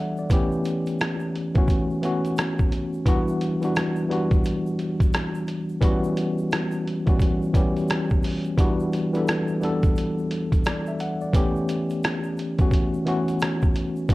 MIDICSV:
0, 0, Header, 1, 3, 480
1, 0, Start_track
1, 0, Tempo, 689655
1, 209, Time_signature, 4, 2, 24, 8
1, 9844, End_track
2, 0, Start_track
2, 0, Title_t, "Tine electric piano"
2, 0, Program_c, 0, 4
2, 0, Control_c, 0, 64, 127
2, 0, Note_on_c, 0, 52, 78
2, 0, Note_on_c, 0, 55, 82
2, 0, Note_on_c, 0, 59, 73
2, 0, Note_on_c, 0, 62, 78
2, 0, Note_on_c, 0, 69, 101
2, 0, Note_on_c, 0, 74, 72
2, 0, Note_on_c, 0, 76, 63
2, 0, Note_on_c, 0, 78, 62
2, 119, Note_off_c, 0, 78, 0
2, 129, Note_off_c, 0, 74, 0
2, 129, Note_on_c, 0, 74, 56
2, 205, Note_off_c, 0, 52, 0
2, 205, Note_on_c, 0, 52, 101
2, 211, Note_on_c, 0, 57, 84
2, 217, Note_off_c, 0, 59, 0
2, 217, Control_c, 0, 64, 0
2, 217, Note_on_c, 0, 59, 92
2, 219, Note_off_c, 0, 62, 0
2, 220, Note_off_c, 0, 55, 0
2, 221, Note_off_c, 0, 76, 0
2, 222, Note_off_c, 0, 69, 0
2, 223, Note_on_c, 0, 61, 96
2, 229, Note_on_c, 0, 67, 110
2, 325, Control_c, 0, 64, 127
2, 353, Note_off_c, 0, 74, 0
2, 905, Note_off_c, 0, 52, 0
2, 908, Note_off_c, 0, 57, 0
2, 911, Note_off_c, 0, 59, 0
2, 914, Note_off_c, 0, 61, 0
2, 917, Note_off_c, 0, 67, 0
2, 1076, Note_on_c, 0, 52, 84
2, 1083, Note_on_c, 0, 57, 75
2, 1087, Note_on_c, 0, 59, 71
2, 1093, Note_on_c, 0, 61, 87
2, 1100, Note_on_c, 0, 66, 102
2, 1360, Note_off_c, 0, 52, 0
2, 1363, Note_off_c, 0, 57, 0
2, 1365, Note_off_c, 0, 59, 0
2, 1368, Note_off_c, 0, 61, 0
2, 1372, Note_off_c, 0, 66, 0
2, 1404, Note_on_c, 0, 52, 77
2, 1410, Note_on_c, 0, 57, 76
2, 1416, Note_on_c, 0, 59, 82
2, 1422, Note_on_c, 0, 61, 79
2, 1428, Note_on_c, 0, 66, 94
2, 2027, Note_off_c, 0, 52, 0
2, 2030, Note_off_c, 0, 57, 0
2, 2034, Note_off_c, 0, 59, 0
2, 2036, Note_off_c, 0, 61, 0
2, 2039, Note_off_c, 0, 66, 0
2, 2125, Note_on_c, 0, 52, 116
2, 2132, Note_on_c, 0, 55, 87
2, 2136, Control_c, 0, 64, 0
2, 2139, Note_on_c, 0, 59, 104
2, 2143, Note_on_c, 0, 62, 93
2, 2150, Note_on_c, 0, 66, 115
2, 2255, Control_c, 0, 64, 127
2, 2437, Note_off_c, 0, 52, 0
2, 2441, Note_off_c, 0, 55, 0
2, 2444, Note_off_c, 0, 59, 0
2, 2446, Note_off_c, 0, 62, 0
2, 2450, Note_off_c, 0, 66, 0
2, 2518, Note_on_c, 0, 52, 81
2, 2524, Note_on_c, 0, 55, 67
2, 2528, Note_on_c, 0, 59, 68
2, 2535, Note_on_c, 0, 62, 67
2, 2541, Note_on_c, 0, 66, 81
2, 2801, Note_off_c, 0, 52, 0
2, 2803, Note_off_c, 0, 55, 0
2, 2806, Note_off_c, 0, 59, 0
2, 2809, Note_off_c, 0, 62, 0
2, 2812, Note_off_c, 0, 66, 0
2, 2847, Note_on_c, 0, 52, 81
2, 2853, Note_on_c, 0, 55, 85
2, 2857, Note_on_c, 0, 59, 71
2, 2864, Note_on_c, 0, 62, 72
2, 2871, Note_on_c, 0, 66, 92
2, 3655, Note_off_c, 0, 52, 0
2, 3658, Note_off_c, 0, 55, 0
2, 3660, Note_off_c, 0, 59, 0
2, 3663, Note_off_c, 0, 62, 0
2, 3667, Note_off_c, 0, 66, 0
2, 4043, Note_on_c, 0, 52, 110
2, 4050, Note_on_c, 0, 55, 92
2, 4055, Note_on_c, 0, 59, 103
2, 4059, Control_c, 0, 64, 0
2, 4062, Note_on_c, 0, 61, 91
2, 4067, Note_on_c, 0, 66, 115
2, 4162, Control_c, 0, 64, 127
2, 4744, Note_off_c, 0, 52, 0
2, 4747, Note_off_c, 0, 55, 0
2, 4750, Note_off_c, 0, 59, 0
2, 4753, Note_off_c, 0, 61, 0
2, 4756, Note_off_c, 0, 66, 0
2, 4914, Note_on_c, 0, 52, 82
2, 4920, Note_on_c, 0, 55, 70
2, 4924, Note_on_c, 0, 59, 73
2, 4932, Note_on_c, 0, 61, 74
2, 4938, Note_on_c, 0, 66, 86
2, 5199, Note_off_c, 0, 52, 0
2, 5201, Note_off_c, 0, 55, 0
2, 5204, Note_off_c, 0, 59, 0
2, 5208, Note_off_c, 0, 61, 0
2, 5211, Note_off_c, 0, 66, 0
2, 5244, Note_on_c, 0, 52, 85
2, 5251, Note_on_c, 0, 55, 80
2, 5255, Note_on_c, 0, 59, 82
2, 5262, Note_on_c, 0, 61, 81
2, 5267, Note_on_c, 0, 67, 98
2, 5867, Note_off_c, 0, 52, 0
2, 5871, Note_off_c, 0, 55, 0
2, 5873, Note_off_c, 0, 59, 0
2, 5876, Note_off_c, 0, 61, 0
2, 5879, Note_off_c, 0, 67, 0
2, 5966, Note_on_c, 0, 52, 102
2, 5972, Note_on_c, 0, 55, 97
2, 5977, Control_c, 0, 64, 0
2, 5978, Note_on_c, 0, 59, 94
2, 5983, Note_on_c, 0, 62, 97
2, 5988, Note_on_c, 0, 66, 103
2, 6106, Control_c, 0, 64, 127
2, 6278, Note_off_c, 0, 52, 0
2, 6281, Note_off_c, 0, 55, 0
2, 6284, Note_off_c, 0, 59, 0
2, 6287, Note_off_c, 0, 62, 0
2, 6289, Note_off_c, 0, 66, 0
2, 6357, Note_on_c, 0, 52, 88
2, 6360, Note_on_c, 0, 55, 68
2, 6367, Note_on_c, 0, 59, 69
2, 6373, Note_on_c, 0, 62, 74
2, 6380, Note_on_c, 0, 69, 85
2, 6640, Note_off_c, 0, 52, 0
2, 6642, Note_off_c, 0, 55, 0
2, 6645, Note_off_c, 0, 59, 0
2, 6648, Note_off_c, 0, 62, 0
2, 6651, Note_off_c, 0, 69, 0
2, 6687, Note_on_c, 0, 52, 77
2, 6693, Note_on_c, 0, 55, 77
2, 6699, Note_on_c, 0, 59, 80
2, 6705, Note_on_c, 0, 62, 78
2, 6711, Note_on_c, 0, 69, 94
2, 7420, Note_on_c, 0, 74, 67
2, 7495, Note_off_c, 0, 52, 0
2, 7498, Note_off_c, 0, 55, 0
2, 7501, Note_off_c, 0, 59, 0
2, 7504, Note_off_c, 0, 62, 0
2, 7507, Note_off_c, 0, 69, 0
2, 7558, Note_off_c, 0, 74, 0
2, 7571, Note_on_c, 0, 76, 62
2, 7650, Note_off_c, 0, 76, 0
2, 7658, Note_on_c, 0, 78, 73
2, 7797, Note_off_c, 0, 78, 0
2, 7806, Note_on_c, 0, 74, 55
2, 7884, Note_on_c, 0, 52, 102
2, 7889, Note_on_c, 0, 57, 100
2, 7895, Note_on_c, 0, 59, 91
2, 7898, Control_c, 0, 64, 0
2, 7901, Note_on_c, 0, 61, 98
2, 7908, Note_on_c, 0, 67, 116
2, 8007, Control_c, 0, 64, 127
2, 8031, Note_off_c, 0, 74, 0
2, 8584, Note_off_c, 0, 52, 0
2, 8587, Note_off_c, 0, 57, 0
2, 8590, Note_off_c, 0, 59, 0
2, 8593, Note_off_c, 0, 61, 0
2, 8597, Note_off_c, 0, 67, 0
2, 8757, Note_on_c, 0, 52, 78
2, 8763, Note_on_c, 0, 57, 85
2, 8768, Note_on_c, 0, 59, 74
2, 8774, Note_on_c, 0, 61, 78
2, 8780, Note_on_c, 0, 66, 100
2, 9040, Note_off_c, 0, 52, 0
2, 9043, Note_off_c, 0, 57, 0
2, 9046, Note_off_c, 0, 59, 0
2, 9048, Note_off_c, 0, 61, 0
2, 9051, Note_off_c, 0, 66, 0
2, 9083, Note_on_c, 0, 52, 85
2, 9090, Note_on_c, 0, 57, 78
2, 9095, Note_on_c, 0, 59, 89
2, 9102, Note_on_c, 0, 61, 79
2, 9107, Note_on_c, 0, 66, 98
2, 9707, Note_off_c, 0, 52, 0
2, 9710, Note_off_c, 0, 57, 0
2, 9713, Note_off_c, 0, 59, 0
2, 9716, Note_off_c, 0, 61, 0
2, 9719, Note_off_c, 0, 66, 0
2, 9807, Note_on_c, 0, 52, 107
2, 9812, Note_on_c, 0, 55, 87
2, 9819, Control_c, 0, 64, 0
2, 9820, Note_on_c, 0, 59, 104
2, 9844, Note_off_c, 0, 52, 0
2, 9844, Note_off_c, 0, 55, 0
2, 9844, Note_off_c, 0, 59, 0
2, 9844, End_track
3, 0, Start_track
3, 0, Title_t, "Drums"
3, 117, Note_on_c, 9, 82, 38
3, 187, Note_off_c, 9, 82, 0
3, 206, Note_on_c, 9, 82, 68
3, 209, Note_on_c, 9, 36, 103
3, 214, Note_on_c, 9, 42, 80
3, 276, Note_off_c, 9, 82, 0
3, 278, Note_off_c, 9, 36, 0
3, 284, Note_off_c, 9, 42, 0
3, 360, Note_on_c, 9, 82, 49
3, 430, Note_off_c, 9, 82, 0
3, 447, Note_on_c, 9, 82, 48
3, 455, Note_on_c, 9, 42, 65
3, 517, Note_off_c, 9, 82, 0
3, 524, Note_off_c, 9, 42, 0
3, 598, Note_on_c, 9, 82, 57
3, 606, Note_on_c, 9, 42, 36
3, 667, Note_off_c, 9, 82, 0
3, 675, Note_off_c, 9, 42, 0
3, 688, Note_on_c, 9, 82, 49
3, 702, Note_on_c, 9, 42, 87
3, 705, Note_on_c, 9, 37, 115
3, 758, Note_off_c, 9, 82, 0
3, 771, Note_off_c, 9, 42, 0
3, 774, Note_off_c, 9, 37, 0
3, 833, Note_on_c, 9, 82, 53
3, 902, Note_off_c, 9, 82, 0
3, 943, Note_on_c, 9, 42, 56
3, 1013, Note_off_c, 9, 42, 0
3, 1077, Note_on_c, 9, 82, 42
3, 1079, Note_on_c, 9, 42, 33
3, 1082, Note_on_c, 9, 36, 103
3, 1146, Note_off_c, 9, 82, 0
3, 1149, Note_off_c, 9, 42, 0
3, 1152, Note_off_c, 9, 36, 0
3, 1167, Note_on_c, 9, 82, 69
3, 1168, Note_on_c, 9, 36, 86
3, 1183, Note_on_c, 9, 42, 62
3, 1237, Note_off_c, 9, 82, 0
3, 1238, Note_off_c, 9, 36, 0
3, 1252, Note_off_c, 9, 42, 0
3, 1325, Note_on_c, 9, 82, 43
3, 1395, Note_off_c, 9, 82, 0
3, 1412, Note_on_c, 9, 82, 47
3, 1413, Note_on_c, 9, 42, 68
3, 1482, Note_off_c, 9, 82, 0
3, 1483, Note_off_c, 9, 42, 0
3, 1564, Note_on_c, 9, 42, 35
3, 1567, Note_on_c, 9, 82, 58
3, 1633, Note_off_c, 9, 42, 0
3, 1636, Note_off_c, 9, 82, 0
3, 1646, Note_on_c, 9, 82, 71
3, 1658, Note_on_c, 9, 42, 75
3, 1662, Note_on_c, 9, 37, 117
3, 1715, Note_off_c, 9, 82, 0
3, 1727, Note_off_c, 9, 42, 0
3, 1732, Note_off_c, 9, 37, 0
3, 1800, Note_on_c, 9, 82, 48
3, 1805, Note_on_c, 9, 36, 101
3, 1869, Note_off_c, 9, 82, 0
3, 1875, Note_off_c, 9, 36, 0
3, 1887, Note_on_c, 9, 82, 43
3, 1895, Note_on_c, 9, 42, 72
3, 1957, Note_off_c, 9, 82, 0
3, 1964, Note_off_c, 9, 42, 0
3, 2040, Note_on_c, 9, 82, 39
3, 2110, Note_off_c, 9, 82, 0
3, 2128, Note_on_c, 9, 36, 114
3, 2130, Note_on_c, 9, 82, 67
3, 2133, Note_on_c, 9, 42, 100
3, 2198, Note_off_c, 9, 36, 0
3, 2200, Note_off_c, 9, 82, 0
3, 2202, Note_off_c, 9, 42, 0
3, 2281, Note_on_c, 9, 82, 51
3, 2351, Note_off_c, 9, 82, 0
3, 2371, Note_on_c, 9, 82, 52
3, 2374, Note_on_c, 9, 42, 72
3, 2440, Note_off_c, 9, 82, 0
3, 2444, Note_off_c, 9, 42, 0
3, 2520, Note_on_c, 9, 82, 54
3, 2525, Note_on_c, 9, 42, 35
3, 2590, Note_off_c, 9, 82, 0
3, 2594, Note_off_c, 9, 42, 0
3, 2613, Note_on_c, 9, 82, 61
3, 2620, Note_on_c, 9, 42, 84
3, 2623, Note_on_c, 9, 37, 109
3, 2683, Note_off_c, 9, 82, 0
3, 2689, Note_off_c, 9, 42, 0
3, 2693, Note_off_c, 9, 37, 0
3, 2756, Note_on_c, 9, 82, 55
3, 2826, Note_off_c, 9, 82, 0
3, 2863, Note_on_c, 9, 42, 60
3, 2933, Note_off_c, 9, 42, 0
3, 2999, Note_on_c, 9, 42, 38
3, 3002, Note_on_c, 9, 36, 103
3, 3003, Note_on_c, 9, 82, 43
3, 3069, Note_off_c, 9, 42, 0
3, 3071, Note_off_c, 9, 36, 0
3, 3073, Note_off_c, 9, 82, 0
3, 3090, Note_on_c, 9, 82, 73
3, 3102, Note_on_c, 9, 42, 70
3, 3159, Note_off_c, 9, 82, 0
3, 3172, Note_off_c, 9, 42, 0
3, 3247, Note_on_c, 9, 82, 44
3, 3316, Note_off_c, 9, 82, 0
3, 3334, Note_on_c, 9, 42, 70
3, 3335, Note_on_c, 9, 82, 45
3, 3403, Note_off_c, 9, 42, 0
3, 3405, Note_off_c, 9, 82, 0
3, 3482, Note_on_c, 9, 36, 101
3, 3482, Note_on_c, 9, 42, 37
3, 3490, Note_on_c, 9, 82, 58
3, 3551, Note_off_c, 9, 36, 0
3, 3552, Note_off_c, 9, 42, 0
3, 3560, Note_off_c, 9, 82, 0
3, 3569, Note_on_c, 9, 82, 75
3, 3577, Note_on_c, 9, 42, 75
3, 3582, Note_on_c, 9, 37, 117
3, 3638, Note_off_c, 9, 82, 0
3, 3647, Note_off_c, 9, 42, 0
3, 3651, Note_off_c, 9, 37, 0
3, 3721, Note_on_c, 9, 82, 57
3, 3791, Note_off_c, 9, 82, 0
3, 3808, Note_on_c, 9, 82, 44
3, 3815, Note_on_c, 9, 42, 70
3, 3878, Note_off_c, 9, 82, 0
3, 3884, Note_off_c, 9, 42, 0
3, 3961, Note_on_c, 9, 82, 37
3, 4031, Note_off_c, 9, 82, 0
3, 4048, Note_on_c, 9, 36, 103
3, 4048, Note_on_c, 9, 82, 64
3, 4054, Note_on_c, 9, 42, 95
3, 4117, Note_off_c, 9, 36, 0
3, 4118, Note_off_c, 9, 82, 0
3, 4123, Note_off_c, 9, 42, 0
3, 4201, Note_on_c, 9, 82, 55
3, 4271, Note_off_c, 9, 82, 0
3, 4289, Note_on_c, 9, 82, 53
3, 4295, Note_on_c, 9, 42, 67
3, 4359, Note_off_c, 9, 82, 0
3, 4365, Note_off_c, 9, 42, 0
3, 4440, Note_on_c, 9, 82, 50
3, 4509, Note_off_c, 9, 82, 0
3, 4530, Note_on_c, 9, 82, 57
3, 4541, Note_on_c, 9, 42, 82
3, 4544, Note_on_c, 9, 37, 118
3, 4599, Note_off_c, 9, 82, 0
3, 4610, Note_off_c, 9, 42, 0
3, 4614, Note_off_c, 9, 37, 0
3, 4673, Note_on_c, 9, 82, 52
3, 4743, Note_off_c, 9, 82, 0
3, 4785, Note_on_c, 9, 42, 54
3, 4854, Note_off_c, 9, 42, 0
3, 4919, Note_on_c, 9, 42, 38
3, 4919, Note_on_c, 9, 82, 41
3, 4922, Note_on_c, 9, 36, 111
3, 4988, Note_off_c, 9, 42, 0
3, 4988, Note_off_c, 9, 82, 0
3, 4992, Note_off_c, 9, 36, 0
3, 5008, Note_on_c, 9, 36, 86
3, 5008, Note_on_c, 9, 82, 75
3, 5023, Note_on_c, 9, 42, 70
3, 5078, Note_off_c, 9, 36, 0
3, 5078, Note_off_c, 9, 82, 0
3, 5093, Note_off_c, 9, 42, 0
3, 5166, Note_on_c, 9, 82, 44
3, 5236, Note_off_c, 9, 82, 0
3, 5249, Note_on_c, 9, 36, 101
3, 5252, Note_on_c, 9, 82, 47
3, 5254, Note_on_c, 9, 42, 70
3, 5318, Note_off_c, 9, 36, 0
3, 5321, Note_off_c, 9, 82, 0
3, 5323, Note_off_c, 9, 42, 0
3, 5404, Note_on_c, 9, 82, 53
3, 5405, Note_on_c, 9, 42, 33
3, 5474, Note_off_c, 9, 82, 0
3, 5475, Note_off_c, 9, 42, 0
3, 5485, Note_on_c, 9, 82, 72
3, 5498, Note_on_c, 9, 42, 75
3, 5503, Note_on_c, 9, 37, 100
3, 5554, Note_off_c, 9, 82, 0
3, 5568, Note_off_c, 9, 42, 0
3, 5573, Note_off_c, 9, 37, 0
3, 5637, Note_on_c, 9, 82, 47
3, 5646, Note_on_c, 9, 36, 87
3, 5707, Note_off_c, 9, 82, 0
3, 5715, Note_off_c, 9, 36, 0
3, 5724, Note_on_c, 9, 82, 47
3, 5737, Note_on_c, 9, 46, 53
3, 5793, Note_off_c, 9, 82, 0
3, 5807, Note_off_c, 9, 46, 0
3, 5878, Note_on_c, 9, 42, 30
3, 5880, Note_on_c, 9, 82, 37
3, 5947, Note_off_c, 9, 42, 0
3, 5950, Note_off_c, 9, 82, 0
3, 5969, Note_on_c, 9, 36, 106
3, 5970, Note_on_c, 9, 82, 63
3, 5976, Note_on_c, 9, 42, 97
3, 6039, Note_off_c, 9, 36, 0
3, 6040, Note_off_c, 9, 82, 0
3, 6045, Note_off_c, 9, 42, 0
3, 6123, Note_on_c, 9, 82, 50
3, 6193, Note_off_c, 9, 82, 0
3, 6211, Note_on_c, 9, 82, 50
3, 6218, Note_on_c, 9, 42, 70
3, 6281, Note_off_c, 9, 82, 0
3, 6287, Note_off_c, 9, 42, 0
3, 6360, Note_on_c, 9, 82, 51
3, 6367, Note_on_c, 9, 42, 34
3, 6430, Note_off_c, 9, 82, 0
3, 6437, Note_off_c, 9, 42, 0
3, 6451, Note_on_c, 9, 82, 53
3, 6462, Note_on_c, 9, 42, 82
3, 6465, Note_on_c, 9, 37, 115
3, 6521, Note_off_c, 9, 82, 0
3, 6531, Note_off_c, 9, 42, 0
3, 6535, Note_off_c, 9, 37, 0
3, 6595, Note_on_c, 9, 82, 54
3, 6664, Note_off_c, 9, 82, 0
3, 6689, Note_on_c, 9, 82, 55
3, 6705, Note_on_c, 9, 42, 57
3, 6759, Note_off_c, 9, 82, 0
3, 6774, Note_off_c, 9, 42, 0
3, 6839, Note_on_c, 9, 82, 45
3, 6841, Note_on_c, 9, 42, 36
3, 6843, Note_on_c, 9, 36, 104
3, 6908, Note_off_c, 9, 82, 0
3, 6910, Note_off_c, 9, 42, 0
3, 6912, Note_off_c, 9, 36, 0
3, 6930, Note_on_c, 9, 82, 73
3, 6945, Note_on_c, 9, 42, 74
3, 6999, Note_off_c, 9, 82, 0
3, 7015, Note_off_c, 9, 42, 0
3, 7087, Note_on_c, 9, 82, 44
3, 7156, Note_off_c, 9, 82, 0
3, 7175, Note_on_c, 9, 42, 71
3, 7245, Note_off_c, 9, 42, 0
3, 7323, Note_on_c, 9, 36, 92
3, 7324, Note_on_c, 9, 42, 37
3, 7326, Note_on_c, 9, 82, 57
3, 7392, Note_off_c, 9, 36, 0
3, 7394, Note_off_c, 9, 42, 0
3, 7395, Note_off_c, 9, 82, 0
3, 7407, Note_on_c, 9, 82, 73
3, 7419, Note_on_c, 9, 42, 72
3, 7424, Note_on_c, 9, 37, 105
3, 7476, Note_off_c, 9, 82, 0
3, 7489, Note_off_c, 9, 42, 0
3, 7493, Note_off_c, 9, 37, 0
3, 7560, Note_on_c, 9, 82, 55
3, 7629, Note_off_c, 9, 82, 0
3, 7647, Note_on_c, 9, 82, 44
3, 7657, Note_on_c, 9, 42, 70
3, 7716, Note_off_c, 9, 82, 0
3, 7726, Note_off_c, 9, 42, 0
3, 7801, Note_on_c, 9, 82, 45
3, 7871, Note_off_c, 9, 82, 0
3, 7889, Note_on_c, 9, 36, 99
3, 7892, Note_on_c, 9, 82, 65
3, 7896, Note_on_c, 9, 42, 96
3, 7958, Note_off_c, 9, 36, 0
3, 7961, Note_off_c, 9, 82, 0
3, 7966, Note_off_c, 9, 42, 0
3, 8044, Note_on_c, 9, 82, 52
3, 8114, Note_off_c, 9, 82, 0
3, 8131, Note_on_c, 9, 82, 55
3, 8136, Note_on_c, 9, 42, 73
3, 8201, Note_off_c, 9, 82, 0
3, 8206, Note_off_c, 9, 42, 0
3, 8279, Note_on_c, 9, 82, 60
3, 8287, Note_on_c, 9, 42, 34
3, 8349, Note_off_c, 9, 82, 0
3, 8357, Note_off_c, 9, 42, 0
3, 8371, Note_on_c, 9, 82, 54
3, 8381, Note_on_c, 9, 42, 91
3, 8385, Note_on_c, 9, 37, 115
3, 8441, Note_off_c, 9, 82, 0
3, 8451, Note_off_c, 9, 42, 0
3, 8454, Note_off_c, 9, 37, 0
3, 8514, Note_on_c, 9, 82, 51
3, 8584, Note_off_c, 9, 82, 0
3, 8609, Note_on_c, 9, 82, 55
3, 8624, Note_on_c, 9, 42, 63
3, 8678, Note_off_c, 9, 82, 0
3, 8694, Note_off_c, 9, 42, 0
3, 8759, Note_on_c, 9, 42, 35
3, 8759, Note_on_c, 9, 82, 43
3, 8762, Note_on_c, 9, 36, 100
3, 8828, Note_off_c, 9, 82, 0
3, 8829, Note_off_c, 9, 42, 0
3, 8832, Note_off_c, 9, 36, 0
3, 8847, Note_on_c, 9, 82, 66
3, 8848, Note_on_c, 9, 36, 85
3, 8864, Note_on_c, 9, 42, 77
3, 8917, Note_off_c, 9, 82, 0
3, 8918, Note_off_c, 9, 36, 0
3, 8934, Note_off_c, 9, 42, 0
3, 9005, Note_on_c, 9, 82, 45
3, 9074, Note_off_c, 9, 82, 0
3, 9095, Note_on_c, 9, 42, 72
3, 9165, Note_off_c, 9, 42, 0
3, 9244, Note_on_c, 9, 82, 57
3, 9245, Note_on_c, 9, 42, 37
3, 9313, Note_off_c, 9, 82, 0
3, 9314, Note_off_c, 9, 42, 0
3, 9325, Note_on_c, 9, 82, 74
3, 9339, Note_on_c, 9, 42, 81
3, 9344, Note_on_c, 9, 37, 112
3, 9395, Note_off_c, 9, 82, 0
3, 9409, Note_off_c, 9, 42, 0
3, 9414, Note_off_c, 9, 37, 0
3, 9478, Note_on_c, 9, 82, 51
3, 9485, Note_on_c, 9, 36, 99
3, 9547, Note_off_c, 9, 82, 0
3, 9555, Note_off_c, 9, 36, 0
3, 9566, Note_on_c, 9, 82, 41
3, 9576, Note_on_c, 9, 42, 66
3, 9636, Note_off_c, 9, 82, 0
3, 9645, Note_off_c, 9, 42, 0
3, 9717, Note_on_c, 9, 82, 41
3, 9787, Note_off_c, 9, 82, 0
3, 9806, Note_on_c, 9, 82, 65
3, 9808, Note_on_c, 9, 36, 117
3, 9814, Note_on_c, 9, 42, 91
3, 9844, Note_off_c, 9, 36, 0
3, 9844, Note_off_c, 9, 42, 0
3, 9844, Note_off_c, 9, 82, 0
3, 9844, End_track
0, 0, End_of_file